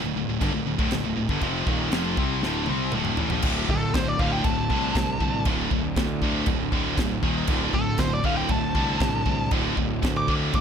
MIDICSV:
0, 0, Header, 1, 5, 480
1, 0, Start_track
1, 0, Key_signature, -1, "minor"
1, 0, Tempo, 506329
1, 1347, Time_signature, 4, 2, 24, 8
1, 10056, End_track
2, 0, Start_track
2, 0, Title_t, "Lead electric guitar"
2, 0, Program_c, 0, 29
2, 3513, Note_on_c, 0, 69, 112
2, 3739, Note_off_c, 0, 69, 0
2, 3743, Note_on_c, 0, 72, 81
2, 3872, Note_off_c, 0, 72, 0
2, 3872, Note_on_c, 0, 74, 78
2, 3977, Note_on_c, 0, 77, 91
2, 3983, Note_off_c, 0, 74, 0
2, 4094, Note_off_c, 0, 77, 0
2, 4098, Note_on_c, 0, 79, 93
2, 4211, Note_off_c, 0, 79, 0
2, 4211, Note_on_c, 0, 81, 102
2, 5146, Note_off_c, 0, 81, 0
2, 7340, Note_on_c, 0, 69, 114
2, 7574, Note_off_c, 0, 69, 0
2, 7588, Note_on_c, 0, 72, 101
2, 7702, Note_off_c, 0, 72, 0
2, 7712, Note_on_c, 0, 74, 100
2, 7823, Note_off_c, 0, 74, 0
2, 7827, Note_on_c, 0, 77, 107
2, 7932, Note_off_c, 0, 77, 0
2, 7936, Note_on_c, 0, 79, 87
2, 8056, Note_off_c, 0, 79, 0
2, 8070, Note_on_c, 0, 81, 108
2, 9001, Note_off_c, 0, 81, 0
2, 9642, Note_on_c, 0, 86, 96
2, 9753, Note_off_c, 0, 86, 0
2, 10004, Note_on_c, 0, 86, 98
2, 10056, Note_off_c, 0, 86, 0
2, 10056, End_track
3, 0, Start_track
3, 0, Title_t, "Distorted electric guitar"
3, 0, Program_c, 1, 30
3, 31, Note_on_c, 1, 38, 75
3, 34, Note_on_c, 1, 45, 73
3, 137, Note_off_c, 1, 38, 0
3, 139, Note_off_c, 1, 45, 0
3, 148, Note_on_c, 1, 38, 72
3, 151, Note_on_c, 1, 45, 87
3, 250, Note_off_c, 1, 38, 0
3, 253, Note_off_c, 1, 45, 0
3, 262, Note_on_c, 1, 38, 69
3, 264, Note_on_c, 1, 45, 73
3, 385, Note_off_c, 1, 38, 0
3, 387, Note_off_c, 1, 45, 0
3, 389, Note_on_c, 1, 43, 101
3, 394, Note_on_c, 1, 50, 106
3, 502, Note_off_c, 1, 43, 0
3, 504, Note_off_c, 1, 50, 0
3, 509, Note_on_c, 1, 38, 74
3, 515, Note_on_c, 1, 45, 74
3, 629, Note_off_c, 1, 38, 0
3, 632, Note_off_c, 1, 45, 0
3, 639, Note_on_c, 1, 38, 76
3, 643, Note_on_c, 1, 45, 81
3, 743, Note_off_c, 1, 38, 0
3, 747, Note_off_c, 1, 45, 0
3, 754, Note_on_c, 1, 38, 83
3, 758, Note_on_c, 1, 45, 106
3, 861, Note_off_c, 1, 38, 0
3, 866, Note_off_c, 1, 45, 0
3, 873, Note_on_c, 1, 38, 68
3, 878, Note_on_c, 1, 45, 81
3, 986, Note_off_c, 1, 38, 0
3, 993, Note_off_c, 1, 45, 0
3, 998, Note_on_c, 1, 38, 76
3, 1004, Note_on_c, 1, 45, 76
3, 1102, Note_off_c, 1, 38, 0
3, 1110, Note_off_c, 1, 45, 0
3, 1113, Note_on_c, 1, 38, 69
3, 1121, Note_on_c, 1, 45, 66
3, 1229, Note_off_c, 1, 38, 0
3, 1233, Note_on_c, 1, 43, 90
3, 1234, Note_off_c, 1, 45, 0
3, 1239, Note_on_c, 1, 50, 91
3, 1342, Note_off_c, 1, 43, 0
3, 1343, Note_off_c, 1, 50, 0
3, 1346, Note_on_c, 1, 41, 92
3, 1347, Note_on_c, 1, 48, 105
3, 1351, Note_on_c, 1, 53, 116
3, 1579, Note_off_c, 1, 41, 0
3, 1579, Note_off_c, 1, 48, 0
3, 1581, Note_off_c, 1, 53, 0
3, 1587, Note_on_c, 1, 39, 87
3, 1594, Note_on_c, 1, 46, 85
3, 1596, Note_on_c, 1, 51, 103
3, 1818, Note_off_c, 1, 39, 0
3, 1822, Note_off_c, 1, 46, 0
3, 1823, Note_off_c, 1, 51, 0
3, 1827, Note_on_c, 1, 41, 93
3, 1830, Note_on_c, 1, 48, 106
3, 1831, Note_on_c, 1, 53, 115
3, 2051, Note_off_c, 1, 48, 0
3, 2058, Note_off_c, 1, 41, 0
3, 2060, Note_off_c, 1, 53, 0
3, 2062, Note_on_c, 1, 48, 101
3, 2067, Note_on_c, 1, 55, 106
3, 2070, Note_on_c, 1, 60, 105
3, 2294, Note_off_c, 1, 48, 0
3, 2295, Note_off_c, 1, 55, 0
3, 2297, Note_on_c, 1, 38, 90
3, 2299, Note_off_c, 1, 60, 0
3, 2299, Note_on_c, 1, 45, 105
3, 2307, Note_on_c, 1, 50, 118
3, 2528, Note_off_c, 1, 38, 0
3, 2532, Note_off_c, 1, 45, 0
3, 2532, Note_on_c, 1, 48, 100
3, 2536, Note_on_c, 1, 55, 98
3, 2538, Note_off_c, 1, 50, 0
3, 2542, Note_on_c, 1, 60, 108
3, 2770, Note_off_c, 1, 48, 0
3, 2772, Note_off_c, 1, 55, 0
3, 2775, Note_off_c, 1, 60, 0
3, 2777, Note_on_c, 1, 38, 91
3, 2782, Note_on_c, 1, 45, 89
3, 2784, Note_on_c, 1, 50, 108
3, 3000, Note_off_c, 1, 45, 0
3, 3007, Note_off_c, 1, 38, 0
3, 3011, Note_on_c, 1, 45, 82
3, 3015, Note_on_c, 1, 52, 93
3, 3016, Note_off_c, 1, 50, 0
3, 3129, Note_off_c, 1, 45, 0
3, 3131, Note_off_c, 1, 52, 0
3, 3134, Note_on_c, 1, 46, 98
3, 3140, Note_on_c, 1, 53, 100
3, 3239, Note_off_c, 1, 46, 0
3, 3243, Note_on_c, 1, 38, 114
3, 3246, Note_off_c, 1, 53, 0
3, 3250, Note_on_c, 1, 45, 105
3, 3252, Note_on_c, 1, 50, 111
3, 3478, Note_off_c, 1, 45, 0
3, 3479, Note_off_c, 1, 38, 0
3, 3483, Note_on_c, 1, 38, 72
3, 3490, Note_off_c, 1, 50, 0
3, 3490, Note_on_c, 1, 45, 85
3, 3494, Note_on_c, 1, 50, 90
3, 3719, Note_off_c, 1, 45, 0
3, 3722, Note_off_c, 1, 38, 0
3, 3726, Note_on_c, 1, 38, 113
3, 3731, Note_on_c, 1, 45, 126
3, 3733, Note_off_c, 1, 50, 0
3, 3736, Note_on_c, 1, 50, 122
3, 3954, Note_off_c, 1, 38, 0
3, 3961, Note_off_c, 1, 45, 0
3, 3966, Note_off_c, 1, 50, 0
3, 3966, Note_on_c, 1, 38, 97
3, 3973, Note_on_c, 1, 45, 90
3, 3977, Note_on_c, 1, 50, 88
3, 4192, Note_off_c, 1, 38, 0
3, 4192, Note_off_c, 1, 45, 0
3, 4200, Note_off_c, 1, 50, 0
3, 4204, Note_on_c, 1, 38, 95
3, 4204, Note_on_c, 1, 45, 113
3, 4211, Note_on_c, 1, 50, 118
3, 4422, Note_off_c, 1, 38, 0
3, 4430, Note_off_c, 1, 45, 0
3, 4433, Note_on_c, 1, 38, 94
3, 4435, Note_off_c, 1, 50, 0
3, 4441, Note_on_c, 1, 45, 104
3, 4446, Note_on_c, 1, 50, 102
3, 4674, Note_off_c, 1, 38, 0
3, 4678, Note_off_c, 1, 45, 0
3, 4682, Note_off_c, 1, 50, 0
3, 4685, Note_on_c, 1, 38, 88
3, 4689, Note_on_c, 1, 45, 114
3, 4693, Note_on_c, 1, 50, 110
3, 4916, Note_off_c, 1, 38, 0
3, 4917, Note_off_c, 1, 45, 0
3, 4923, Note_off_c, 1, 50, 0
3, 4928, Note_on_c, 1, 38, 83
3, 4928, Note_on_c, 1, 45, 78
3, 4934, Note_on_c, 1, 50, 94
3, 5158, Note_off_c, 1, 38, 0
3, 5165, Note_off_c, 1, 50, 0
3, 5166, Note_off_c, 1, 45, 0
3, 5170, Note_on_c, 1, 38, 101
3, 5176, Note_on_c, 1, 50, 109
3, 5178, Note_on_c, 1, 45, 103
3, 5404, Note_off_c, 1, 38, 0
3, 5410, Note_off_c, 1, 45, 0
3, 5415, Note_off_c, 1, 50, 0
3, 5415, Note_on_c, 1, 38, 81
3, 5421, Note_on_c, 1, 45, 95
3, 5427, Note_on_c, 1, 50, 85
3, 5641, Note_off_c, 1, 38, 0
3, 5649, Note_off_c, 1, 45, 0
3, 5652, Note_off_c, 1, 50, 0
3, 5652, Note_on_c, 1, 38, 110
3, 5661, Note_on_c, 1, 45, 119
3, 5663, Note_on_c, 1, 50, 117
3, 5886, Note_off_c, 1, 38, 0
3, 5887, Note_off_c, 1, 45, 0
3, 5894, Note_off_c, 1, 50, 0
3, 5897, Note_on_c, 1, 38, 93
3, 5898, Note_on_c, 1, 45, 105
3, 5906, Note_on_c, 1, 50, 108
3, 6122, Note_off_c, 1, 38, 0
3, 6127, Note_off_c, 1, 45, 0
3, 6131, Note_off_c, 1, 50, 0
3, 6133, Note_on_c, 1, 38, 104
3, 6139, Note_on_c, 1, 45, 102
3, 6142, Note_on_c, 1, 50, 123
3, 6359, Note_off_c, 1, 38, 0
3, 6363, Note_off_c, 1, 45, 0
3, 6366, Note_off_c, 1, 50, 0
3, 6370, Note_on_c, 1, 38, 90
3, 6374, Note_on_c, 1, 45, 95
3, 6378, Note_on_c, 1, 50, 101
3, 6602, Note_off_c, 1, 38, 0
3, 6603, Note_off_c, 1, 45, 0
3, 6608, Note_off_c, 1, 50, 0
3, 6614, Note_on_c, 1, 38, 96
3, 6615, Note_on_c, 1, 45, 92
3, 6619, Note_on_c, 1, 50, 111
3, 6843, Note_off_c, 1, 38, 0
3, 6843, Note_off_c, 1, 45, 0
3, 6846, Note_off_c, 1, 50, 0
3, 6849, Note_on_c, 1, 39, 101
3, 6854, Note_on_c, 1, 46, 104
3, 6861, Note_on_c, 1, 51, 106
3, 7080, Note_off_c, 1, 39, 0
3, 7083, Note_off_c, 1, 46, 0
3, 7087, Note_off_c, 1, 51, 0
3, 7098, Note_on_c, 1, 38, 112
3, 7100, Note_on_c, 1, 45, 105
3, 7107, Note_on_c, 1, 50, 116
3, 7330, Note_off_c, 1, 45, 0
3, 7332, Note_off_c, 1, 38, 0
3, 7336, Note_on_c, 1, 38, 87
3, 7341, Note_off_c, 1, 50, 0
3, 7341, Note_on_c, 1, 45, 83
3, 7345, Note_on_c, 1, 50, 89
3, 7556, Note_off_c, 1, 38, 0
3, 7563, Note_off_c, 1, 45, 0
3, 7567, Note_on_c, 1, 38, 114
3, 7569, Note_off_c, 1, 50, 0
3, 7574, Note_on_c, 1, 45, 126
3, 7580, Note_on_c, 1, 50, 127
3, 7802, Note_off_c, 1, 38, 0
3, 7805, Note_off_c, 1, 45, 0
3, 7810, Note_off_c, 1, 50, 0
3, 7813, Note_on_c, 1, 38, 86
3, 7816, Note_on_c, 1, 45, 98
3, 7821, Note_on_c, 1, 50, 100
3, 8038, Note_off_c, 1, 38, 0
3, 8046, Note_off_c, 1, 45, 0
3, 8048, Note_off_c, 1, 50, 0
3, 8050, Note_on_c, 1, 38, 100
3, 8057, Note_on_c, 1, 45, 104
3, 8060, Note_on_c, 1, 50, 115
3, 8279, Note_off_c, 1, 38, 0
3, 8282, Note_off_c, 1, 45, 0
3, 8285, Note_off_c, 1, 50, 0
3, 8290, Note_on_c, 1, 38, 94
3, 8294, Note_on_c, 1, 45, 99
3, 8297, Note_on_c, 1, 50, 103
3, 8517, Note_off_c, 1, 38, 0
3, 8523, Note_off_c, 1, 45, 0
3, 8526, Note_off_c, 1, 50, 0
3, 8529, Note_on_c, 1, 38, 101
3, 8534, Note_on_c, 1, 45, 102
3, 8538, Note_on_c, 1, 50, 112
3, 8759, Note_off_c, 1, 38, 0
3, 8761, Note_off_c, 1, 45, 0
3, 8767, Note_off_c, 1, 50, 0
3, 8770, Note_on_c, 1, 38, 79
3, 8772, Note_on_c, 1, 45, 83
3, 8779, Note_on_c, 1, 50, 96
3, 9003, Note_off_c, 1, 38, 0
3, 9005, Note_off_c, 1, 45, 0
3, 9013, Note_off_c, 1, 50, 0
3, 9014, Note_on_c, 1, 38, 98
3, 9016, Note_on_c, 1, 45, 102
3, 9024, Note_on_c, 1, 50, 115
3, 9251, Note_off_c, 1, 38, 0
3, 9253, Note_off_c, 1, 45, 0
3, 9256, Note_off_c, 1, 50, 0
3, 9262, Note_on_c, 1, 38, 85
3, 9264, Note_on_c, 1, 45, 90
3, 9267, Note_on_c, 1, 50, 89
3, 9491, Note_off_c, 1, 38, 0
3, 9497, Note_off_c, 1, 45, 0
3, 9502, Note_on_c, 1, 38, 115
3, 9503, Note_off_c, 1, 50, 0
3, 9509, Note_on_c, 1, 45, 115
3, 9515, Note_on_c, 1, 50, 114
3, 9735, Note_off_c, 1, 38, 0
3, 9737, Note_off_c, 1, 45, 0
3, 9741, Note_off_c, 1, 50, 0
3, 9747, Note_on_c, 1, 38, 102
3, 9749, Note_on_c, 1, 45, 87
3, 9753, Note_on_c, 1, 50, 105
3, 9981, Note_off_c, 1, 38, 0
3, 9988, Note_off_c, 1, 45, 0
3, 9990, Note_off_c, 1, 50, 0
3, 9992, Note_on_c, 1, 38, 109
3, 9999, Note_on_c, 1, 45, 103
3, 10001, Note_on_c, 1, 50, 126
3, 10056, Note_off_c, 1, 38, 0
3, 10056, Note_off_c, 1, 45, 0
3, 10056, Note_off_c, 1, 50, 0
3, 10056, End_track
4, 0, Start_track
4, 0, Title_t, "Fingered electric bass"
4, 0, Program_c, 2, 33
4, 37, Note_on_c, 2, 26, 80
4, 145, Note_off_c, 2, 26, 0
4, 150, Note_on_c, 2, 26, 81
4, 261, Note_off_c, 2, 26, 0
4, 274, Note_on_c, 2, 26, 84
4, 383, Note_off_c, 2, 26, 0
4, 390, Note_on_c, 2, 31, 107
4, 501, Note_off_c, 2, 31, 0
4, 520, Note_on_c, 2, 26, 77
4, 626, Note_off_c, 2, 26, 0
4, 635, Note_on_c, 2, 26, 80
4, 743, Note_off_c, 2, 26, 0
4, 748, Note_on_c, 2, 26, 83
4, 859, Note_off_c, 2, 26, 0
4, 873, Note_on_c, 2, 26, 90
4, 982, Note_off_c, 2, 26, 0
4, 994, Note_on_c, 2, 26, 76
4, 1102, Note_off_c, 2, 26, 0
4, 1114, Note_on_c, 2, 26, 79
4, 1218, Note_off_c, 2, 26, 0
4, 1223, Note_on_c, 2, 31, 90
4, 1336, Note_off_c, 2, 31, 0
4, 1345, Note_on_c, 2, 29, 113
4, 1568, Note_off_c, 2, 29, 0
4, 1579, Note_on_c, 2, 27, 100
4, 1805, Note_off_c, 2, 27, 0
4, 1829, Note_on_c, 2, 29, 87
4, 2050, Note_off_c, 2, 29, 0
4, 2062, Note_on_c, 2, 36, 96
4, 2286, Note_off_c, 2, 36, 0
4, 2308, Note_on_c, 2, 26, 105
4, 2529, Note_off_c, 2, 26, 0
4, 2550, Note_on_c, 2, 36, 96
4, 2769, Note_off_c, 2, 36, 0
4, 2785, Note_on_c, 2, 26, 90
4, 3007, Note_off_c, 2, 26, 0
4, 3033, Note_on_c, 2, 33, 99
4, 3137, Note_off_c, 2, 33, 0
4, 3143, Note_on_c, 2, 34, 96
4, 3249, Note_off_c, 2, 34, 0
4, 3254, Note_on_c, 2, 26, 107
4, 3481, Note_off_c, 2, 26, 0
4, 3496, Note_on_c, 2, 26, 100
4, 3722, Note_off_c, 2, 26, 0
4, 3740, Note_on_c, 2, 26, 92
4, 3964, Note_off_c, 2, 26, 0
4, 3975, Note_on_c, 2, 26, 88
4, 4201, Note_off_c, 2, 26, 0
4, 4215, Note_on_c, 2, 26, 106
4, 4441, Note_off_c, 2, 26, 0
4, 4458, Note_on_c, 2, 36, 85
4, 4682, Note_off_c, 2, 36, 0
4, 4696, Note_on_c, 2, 36, 92
4, 4921, Note_off_c, 2, 36, 0
4, 4935, Note_on_c, 2, 36, 100
4, 5161, Note_off_c, 2, 36, 0
4, 5175, Note_on_c, 2, 26, 108
4, 5400, Note_off_c, 2, 26, 0
4, 5414, Note_on_c, 2, 26, 104
4, 5640, Note_off_c, 2, 26, 0
4, 5655, Note_on_c, 2, 38, 94
4, 6104, Note_off_c, 2, 38, 0
4, 6131, Note_on_c, 2, 26, 108
4, 6359, Note_off_c, 2, 26, 0
4, 6371, Note_on_c, 2, 26, 91
4, 6599, Note_off_c, 2, 26, 0
4, 6612, Note_on_c, 2, 26, 100
4, 6840, Note_off_c, 2, 26, 0
4, 6852, Note_on_c, 2, 27, 86
4, 7080, Note_off_c, 2, 27, 0
4, 7094, Note_on_c, 2, 26, 108
4, 7321, Note_off_c, 2, 26, 0
4, 7332, Note_on_c, 2, 26, 106
4, 7561, Note_off_c, 2, 26, 0
4, 7568, Note_on_c, 2, 26, 102
4, 7799, Note_off_c, 2, 26, 0
4, 7814, Note_on_c, 2, 26, 89
4, 8042, Note_off_c, 2, 26, 0
4, 8050, Note_on_c, 2, 26, 108
4, 8280, Note_off_c, 2, 26, 0
4, 8296, Note_on_c, 2, 36, 101
4, 8524, Note_off_c, 2, 36, 0
4, 8535, Note_on_c, 2, 36, 95
4, 8764, Note_off_c, 2, 36, 0
4, 8776, Note_on_c, 2, 36, 98
4, 9005, Note_off_c, 2, 36, 0
4, 9022, Note_on_c, 2, 26, 106
4, 9249, Note_off_c, 2, 26, 0
4, 9262, Note_on_c, 2, 26, 104
4, 9489, Note_off_c, 2, 26, 0
4, 9509, Note_on_c, 2, 38, 91
4, 9959, Note_off_c, 2, 38, 0
4, 9992, Note_on_c, 2, 26, 104
4, 10056, Note_off_c, 2, 26, 0
4, 10056, End_track
5, 0, Start_track
5, 0, Title_t, "Drums"
5, 390, Note_on_c, 9, 36, 107
5, 393, Note_on_c, 9, 52, 66
5, 485, Note_off_c, 9, 36, 0
5, 488, Note_off_c, 9, 52, 0
5, 748, Note_on_c, 9, 36, 122
5, 843, Note_off_c, 9, 36, 0
5, 861, Note_on_c, 9, 52, 65
5, 872, Note_on_c, 9, 38, 98
5, 955, Note_off_c, 9, 52, 0
5, 967, Note_off_c, 9, 38, 0
5, 1224, Note_on_c, 9, 36, 110
5, 1319, Note_off_c, 9, 36, 0
5, 1340, Note_on_c, 9, 52, 55
5, 1343, Note_on_c, 9, 36, 103
5, 1434, Note_off_c, 9, 52, 0
5, 1438, Note_off_c, 9, 36, 0
5, 1582, Note_on_c, 9, 36, 112
5, 1676, Note_off_c, 9, 36, 0
5, 1817, Note_on_c, 9, 52, 59
5, 1828, Note_on_c, 9, 38, 114
5, 1912, Note_off_c, 9, 52, 0
5, 1923, Note_off_c, 9, 38, 0
5, 2060, Note_on_c, 9, 36, 118
5, 2155, Note_off_c, 9, 36, 0
5, 2304, Note_on_c, 9, 38, 64
5, 2399, Note_off_c, 9, 38, 0
5, 2523, Note_on_c, 9, 48, 75
5, 2617, Note_off_c, 9, 48, 0
5, 2767, Note_on_c, 9, 47, 95
5, 2862, Note_off_c, 9, 47, 0
5, 2889, Note_on_c, 9, 45, 81
5, 2984, Note_off_c, 9, 45, 0
5, 3007, Note_on_c, 9, 43, 100
5, 3102, Note_off_c, 9, 43, 0
5, 3128, Note_on_c, 9, 43, 98
5, 3223, Note_off_c, 9, 43, 0
5, 3246, Note_on_c, 9, 49, 121
5, 3246, Note_on_c, 9, 52, 65
5, 3254, Note_on_c, 9, 36, 116
5, 3341, Note_off_c, 9, 49, 0
5, 3341, Note_off_c, 9, 52, 0
5, 3349, Note_off_c, 9, 36, 0
5, 3496, Note_on_c, 9, 36, 87
5, 3590, Note_off_c, 9, 36, 0
5, 3737, Note_on_c, 9, 52, 71
5, 3738, Note_on_c, 9, 36, 125
5, 3748, Note_on_c, 9, 38, 122
5, 3832, Note_off_c, 9, 52, 0
5, 3833, Note_off_c, 9, 36, 0
5, 3843, Note_off_c, 9, 38, 0
5, 3976, Note_on_c, 9, 36, 102
5, 4071, Note_off_c, 9, 36, 0
5, 4210, Note_on_c, 9, 52, 60
5, 4215, Note_on_c, 9, 36, 119
5, 4305, Note_off_c, 9, 52, 0
5, 4310, Note_off_c, 9, 36, 0
5, 4456, Note_on_c, 9, 36, 83
5, 4551, Note_off_c, 9, 36, 0
5, 4695, Note_on_c, 9, 36, 117
5, 4697, Note_on_c, 9, 52, 62
5, 4708, Note_on_c, 9, 38, 118
5, 4790, Note_off_c, 9, 36, 0
5, 4791, Note_off_c, 9, 52, 0
5, 4803, Note_off_c, 9, 38, 0
5, 4934, Note_on_c, 9, 36, 85
5, 5029, Note_off_c, 9, 36, 0
5, 5168, Note_on_c, 9, 52, 61
5, 5174, Note_on_c, 9, 36, 117
5, 5263, Note_off_c, 9, 52, 0
5, 5269, Note_off_c, 9, 36, 0
5, 5415, Note_on_c, 9, 36, 91
5, 5510, Note_off_c, 9, 36, 0
5, 5652, Note_on_c, 9, 52, 61
5, 5654, Note_on_c, 9, 36, 113
5, 5664, Note_on_c, 9, 38, 123
5, 5747, Note_off_c, 9, 52, 0
5, 5749, Note_off_c, 9, 36, 0
5, 5759, Note_off_c, 9, 38, 0
5, 5894, Note_on_c, 9, 36, 95
5, 5989, Note_off_c, 9, 36, 0
5, 6125, Note_on_c, 9, 52, 71
5, 6132, Note_on_c, 9, 36, 119
5, 6219, Note_off_c, 9, 52, 0
5, 6227, Note_off_c, 9, 36, 0
5, 6372, Note_on_c, 9, 36, 92
5, 6467, Note_off_c, 9, 36, 0
5, 6612, Note_on_c, 9, 36, 113
5, 6614, Note_on_c, 9, 52, 63
5, 6625, Note_on_c, 9, 38, 106
5, 6707, Note_off_c, 9, 36, 0
5, 6708, Note_off_c, 9, 52, 0
5, 6720, Note_off_c, 9, 38, 0
5, 6852, Note_on_c, 9, 36, 97
5, 6947, Note_off_c, 9, 36, 0
5, 7086, Note_on_c, 9, 52, 72
5, 7092, Note_on_c, 9, 36, 126
5, 7181, Note_off_c, 9, 52, 0
5, 7187, Note_off_c, 9, 36, 0
5, 7330, Note_on_c, 9, 36, 83
5, 7425, Note_off_c, 9, 36, 0
5, 7563, Note_on_c, 9, 52, 73
5, 7569, Note_on_c, 9, 36, 116
5, 7575, Note_on_c, 9, 38, 119
5, 7658, Note_off_c, 9, 52, 0
5, 7664, Note_off_c, 9, 36, 0
5, 7669, Note_off_c, 9, 38, 0
5, 7810, Note_on_c, 9, 36, 101
5, 7905, Note_off_c, 9, 36, 0
5, 8047, Note_on_c, 9, 52, 62
5, 8053, Note_on_c, 9, 36, 102
5, 8141, Note_off_c, 9, 52, 0
5, 8147, Note_off_c, 9, 36, 0
5, 8294, Note_on_c, 9, 36, 94
5, 8389, Note_off_c, 9, 36, 0
5, 8535, Note_on_c, 9, 52, 59
5, 8536, Note_on_c, 9, 36, 113
5, 8547, Note_on_c, 9, 38, 107
5, 8630, Note_off_c, 9, 52, 0
5, 8631, Note_off_c, 9, 36, 0
5, 8641, Note_off_c, 9, 38, 0
5, 8778, Note_on_c, 9, 36, 88
5, 8873, Note_off_c, 9, 36, 0
5, 9016, Note_on_c, 9, 52, 70
5, 9021, Note_on_c, 9, 36, 121
5, 9111, Note_off_c, 9, 52, 0
5, 9116, Note_off_c, 9, 36, 0
5, 9264, Note_on_c, 9, 36, 90
5, 9359, Note_off_c, 9, 36, 0
5, 9508, Note_on_c, 9, 36, 122
5, 9513, Note_on_c, 9, 52, 66
5, 9524, Note_on_c, 9, 38, 120
5, 9602, Note_off_c, 9, 36, 0
5, 9608, Note_off_c, 9, 52, 0
5, 9619, Note_off_c, 9, 38, 0
5, 9748, Note_on_c, 9, 36, 97
5, 9843, Note_off_c, 9, 36, 0
5, 9987, Note_on_c, 9, 52, 61
5, 9991, Note_on_c, 9, 36, 117
5, 10056, Note_off_c, 9, 36, 0
5, 10056, Note_off_c, 9, 52, 0
5, 10056, End_track
0, 0, End_of_file